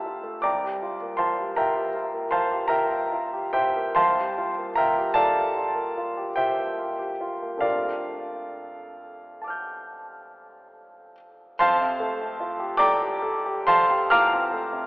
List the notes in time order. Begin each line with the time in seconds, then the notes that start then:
Already playing: G1 A3 F4 G4 A#4 C5 E5 F5 G5 A5 A#5 C6 E6
0.06 F4
0.23 A3
0.42 C2 D5 G5 A#5 D6
0.64 G4
0.82 F4
1.02 A#3
1.17 F4 C5 F5 A5 C6
1.38 G4
1.56 F4 A#4 E5 G5 A#5
1.76 G4
1.94 F4
2.14 A#3
2.31 F4 C5 F5 A5 C6
2.51 G4
2.68 F4 A#4 E5 G5 A#5
2.90 A#3
3.12 F4
3.33 G4
3.53 F4 G4 C5 E5 G5
3.76 A#3
3.95 C2 C5 F5 A5 C6
4.17 G4
4.38 F4
4.58 A#3
4.75 F4 A#4 E5 G5 A#5
4.98 G4
5.14 F4 A4 D5 F5 A5
5.37 G4
5.55 F4
5.75 A#3
5.97 F4
6.17 G4
6.36 F4 G4 C5 E5 G5
6.59 A#3
6.78 F4
6.99 G4
7.21 F4
7.42 A#3
7.57 F2 A3 D4 G4 F5
7.61 F4 A#4 D5
9.42 A5 D6
9.48 F6 G6
11.59 F2 C5 F5 A5 C6
11.81 C3
12.00 A3
12.22 C4
12.40 F4
12.59 G4
12.77 A4 D5 G5 A#5 D6
13.02 G4
13.22 A4
13.46 G4
13.67 A4 C5 F5 A5 C6
13.90 G4
14.10 F4 F5 A#5 D6 F6
14.33 C4
14.53 A3
14.73 C3